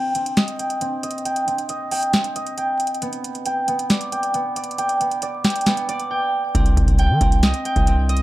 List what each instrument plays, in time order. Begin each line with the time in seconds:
Already playing: harp C4 D#5 G5
0.15 harp C4, closed hi-hat
0.26 closed hi-hat
0.37 harp D#5, snare, closed hi-hat
0.48 closed hi-hat
0.59 harp G5, closed hi-hat
0.70 closed hi-hat
0.81 harp C4, closed hi-hat
1.03 harp D#5, closed hi-hat
1.11 closed hi-hat
1.18 closed hi-hat
1.25 harp G5, closed hi-hat
1.36 closed hi-hat
1.47 harp C4, closed hi-hat
1.58 closed hi-hat
1.69 harp D#5, closed hi-hat
1.91 harp G5, open hi-hat
2.03 closed hi-hat
2.13 harp C4, snare, closed hi-hat
2.24 closed hi-hat
2.36 harp D#5, closed hi-hat
2.46 closed hi-hat
2.58 harp G5, closed hi-hat
2.80 closed hi-hat
2.87 closed hi-hat
2.94 closed hi-hat
3.02 harp B3, closed hi-hat
3.13 closed hi-hat
3.24 closed hi-hat
3.35 closed hi-hat
3.46 harp G5, closed hi-hat
3.68 harp B3, closed hi-hat
3.79 closed hi-hat
3.90 harp D5, snare, closed hi-hat
4.01 closed hi-hat
4.12 harp G5, closed hi-hat
4.23 closed hi-hat
4.34 harp B3, closed hi-hat
4.56 harp D5, closed hi-hat
4.64 closed hi-hat
4.71 closed hi-hat
4.78 harp G5, closed hi-hat
4.89 closed hi-hat
5.00 harp B3, closed hi-hat
5.11 closed hi-hat
5.22 harp D5, closed hi-hat
5.44 harp G5, snare, closed hi-hat, open hi-hat
5.50 closed hi-hat
5.56 closed hi-hat
5.61 closed hi-hat
5.66 harp B3, snare, closed hi-hat
5.77 closed hi-hat
5.89 harp D5, closed hi-hat
6.00 closed hi-hat
6.11 harp G5
6.55 808-style bass C2, harp C4, kick, closed hi-hat
6.66 closed hi-hat
6.77 808-style bass C2, kick, closed hi-hat
6.88 kick, closed hi-hat
6.99 harp G5, closed hi-hat
7.10 808-style bass D#3
7.21 808-style bass C2, harp C4, kick, closed hi-hat
7.32 closed hi-hat
7.43 harp D#5, snare, closed hi-hat
7.54 closed hi-hat
7.65 harp G5, closed hi-hat
7.76 808-style bass C2, kick, closed hi-hat
7.87 harp C4, closed hi-hat
8.09 harp D#5, closed hi-hat
8.17 closed hi-hat